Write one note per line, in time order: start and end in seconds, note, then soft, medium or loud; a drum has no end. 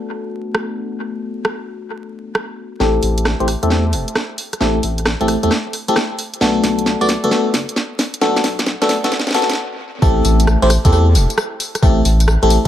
0.00 2.78 A3 medium
0.00 2.78 B3 medium
0.00 2.78 D4 medium
0.00 2.78 F#4 medium
0.00 2.78 A4 medium
0.54 cross-stick loud
1.45 cross-stick loud
2.35 cross-stick loud
2.80 2.99 A1 medium
2.80 3.37 A3 medium
2.80 3.37 C4 medium
2.80 3.37 E4 medium
2.80 3.37 G4 medium
2.80 3.37 A4 medium
2.80 snare soft
3.03 3.34 A1 loud
3.03 open hi-hat loud
3.18 closed hi-hat medium
3.25 cross-stick loud
3.25 snare soft
3.40 3.55 A1 medium
3.40 3.47 A3 medium
3.40 3.47 C4 medium
3.40 3.47 E4 medium
3.40 3.47 G4 medium
3.40 3.47 C5 loud
3.40 closed hi-hat soft
3.48 cross-stick medium
3.48 open hi-hat loud
3.63 3.94 E2 medium
3.63 3.69 A3 medium
3.63 3.69 C4 medium
3.63 3.69 E4 medium
3.63 3.69 G4 medium
3.63 3.69 A4 medium
3.63 closed hi-hat medium
3.70 3.84 A3 medium
3.70 3.84 C4 medium
3.70 3.84 E4 medium
3.70 3.84 G4 medium
3.70 3.84 A4 medium
3.70 snare medium
3.93 4.04 E1 medium
3.93 open hi-hat loud
4.08 closed hi-hat medium
4.15 cross-stick loud
4.15 snare medium
4.38 open hi-hat loud
4.53 cross-stick medium
4.53 closed hi-hat medium
4.60 4.79 A1 loud
4.60 4.79 A3 medium
4.60 4.79 C4 medium
4.60 4.79 E4 medium
4.60 4.79 G4 medium
4.60 4.79 A4 medium
4.60 snare medium
4.83 5.15 A1 loud
4.83 open hi-hat loud
4.98 closed hi-hat medium
5.06 cross-stick loud
5.06 snare medium
5.21 5.36 A1 medium
5.21 5.35 A3 medium
5.21 5.35 C4 medium
5.21 5.35 E4 medium
5.21 5.35 G4 medium
5.21 5.35 A4 medium
5.21 closed hi-hat soft
5.28 cross-stick medium
5.28 open hi-hat loud
5.43 5.49 E2 medium
5.43 5.50 A3 medium
5.43 5.50 C4 medium
5.43 5.50 E4 medium
5.43 5.50 G4 medium
5.43 5.50 A4 medium
5.43 closed hi-hat medium
5.51 cross-stick medium
5.51 snare medium
5.73 open hi-hat loud
5.88 5.95 A3 medium
5.88 5.95 C4 medium
5.88 5.95 E4 medium
5.88 5.95 G4 medium
5.88 5.95 A4 loud
5.88 closed hi-hat medium
5.96 cross-stick loud
5.96 snare medium
6.19 open hi-hat loud
6.34 closed hi-hat medium
6.41 6.60 B1 loud
6.41 6.98 A3 medium
6.41 6.98 B3 medium
6.41 6.98 D4 medium
6.41 6.98 F#4 medium
6.41 6.98 A4 loud
6.41 snare medium
6.64 6.95 B1 loud
6.64 snare medium
6.64 open hi-hat loud
6.79 closed hi-hat medium
6.86 snare medium
7.01 7.16 B1 medium
7.01 7.08 A3 medium
7.01 7.08 B3 medium
7.01 7.08 D4 medium
7.01 7.08 F#4 medium
7.01 7.08 D5 loud
7.01 closed hi-hat soft
7.09 snare medium
7.09 open hi-hat loud
7.24 7.29 F#1 medium
7.24 7.29 A3 medium
7.24 7.29 B3 medium
7.24 7.29 D4 medium
7.24 7.29 F#4 medium
7.24 7.30 A4 loud
7.24 closed hi-hat medium
7.31 7.45 A3 medium
7.31 7.45 B3 medium
7.31 7.45 D4 medium
7.31 7.45 F#4 medium
7.31 7.45 A4 medium
7.31 snare medium
7.54 7.65 F#1 medium
7.54 snare medium
7.54 open hi-hat loud
7.69 closed hi-hat medium
7.76 snare medium
7.99 snare medium
7.99 open hi-hat loud
8.14 closed hi-hat medium
8.21 8.40 B1 loud
8.21 8.40 A3 medium
8.21 8.40 B3 medium
8.21 8.40 D4 medium
8.21 8.40 F#4 medium
8.21 8.40 A4 loud
8.21 snare medium
8.36 snare medium
8.44 8.76 B1 loud
8.44 snare medium
8.44 open hi-hat loud
8.59 snare medium
8.59 closed hi-hat medium
8.67 snare medium
8.82 8.97 B1 medium
8.82 8.96 A3 medium
8.82 8.96 B3 medium
8.82 8.96 D4 medium
8.82 8.96 F#4 medium
8.82 8.96 A4 medium
8.82 snare medium
8.82 closed hi-hat soft
8.89 snare loud
8.89 open hi-hat loud
9.04 9.10 F#1 medium
9.04 9.11 A3 medium
9.04 9.11 B3 medium
9.04 9.11 D4 medium
9.04 9.11 F#4 medium
9.04 9.11 A4 medium
9.04 snare medium
9.04 closed hi-hat medium
9.12 snare loud
9.19 snare medium
9.27 snare medium
9.31 9.48 A3 medium
9.31 9.48 B3 medium
9.31 9.48 D4 medium
9.31 9.48 F#4 medium
9.31 9.48 A4 loud
9.31 snare medium
9.34 snare loud
9.34 open hi-hat loud
9.42 snare medium
9.49 snare medium
9.49 closed hi-hat medium
9.53 snare medium
10.02 10.21 A1 loud
10.02 10.59 A3 medium
10.02 10.59 C4 medium
10.02 10.59 E4 medium
10.02 10.59 G4 medium
10.02 10.59 A4 loud
10.02 kick loud
10.02 tambourine soft
10.25 10.56 A1 loud
10.25 open hi-hat loud
10.25 tambourine medium
10.40 closed hi-hat medium
10.40 tambourine soft
10.47 cross-stick loud
10.47 tambourine soft
10.62 10.77 A1 medium
10.62 10.69 A3 loud
10.62 10.69 C4 medium
10.62 10.69 E4 medium
10.62 10.69 G4 medium
10.62 10.69 C5 loud
10.62 closed hi-hat soft
10.70 cross-stick medium
10.70 open hi-hat loud
10.70 tambourine medium
10.85 11.16 E2 medium
10.85 10.90 A3 medium
10.85 10.90 C4 medium
10.85 10.90 E4 medium
10.85 10.90 G4 medium
10.85 10.90 A4 loud
10.85 kick loud
10.85 closed hi-hat medium
10.85 tambourine soft
10.92 11.06 A3 medium
10.92 11.06 C4 medium
10.92 11.06 E4 medium
10.92 11.06 G4 medium
10.92 11.06 A4 medium
10.92 tambourine soft
11.15 11.26 E1 loud
11.15 open hi-hat loud
11.15 tambourine medium
11.30 closed hi-hat medium
11.30 tambourine soft
11.38 cross-stick loud
11.38 tambourine soft
11.60 open hi-hat loud
11.60 tambourine medium
11.75 cross-stick medium
11.75 closed hi-hat medium
11.75 tambourine soft
11.83 12.01 A1 loud
11.83 12.01 A3 medium
11.83 12.01 C4 medium
11.83 12.01 E4 medium
11.83 12.01 G4 medium
11.83 12.01 A4 loud
11.83 kick loud
11.83 tambourine soft
12.05 12.37 A1 loud
12.05 open hi-hat loud
12.05 tambourine medium
12.20 closed hi-hat medium
12.20 tambourine soft
12.28 cross-stick loud
12.28 tambourine soft
12.43 12.58 A1 medium
12.43 12.57 A3 medium
12.43 12.57 C4 medium
12.43 12.57 E4 medium
12.43 12.57 G4 medium
12.43 12.57 A4 medium
12.43 closed hi-hat soft
12.50 open hi-hat loud
12.50 tambourine medium